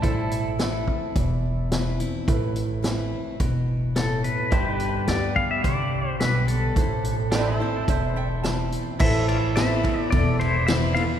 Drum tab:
CC |--------|--------|--------|--------|
RD |--------|--------|--------|--------|
HH |xxx-x-xx|xxx-x-xx|xxx-x-xx|xxx-x-xx|
SD |--o---o-|--o---o-|--o---o-|--o---o-|
BD |o--oo---|o---o---|o--oo---|o---o---|

CC |x-------|
RD |-xxxxxxx|
HH |--------|
SD |--o---o-|
BD |o--oo---|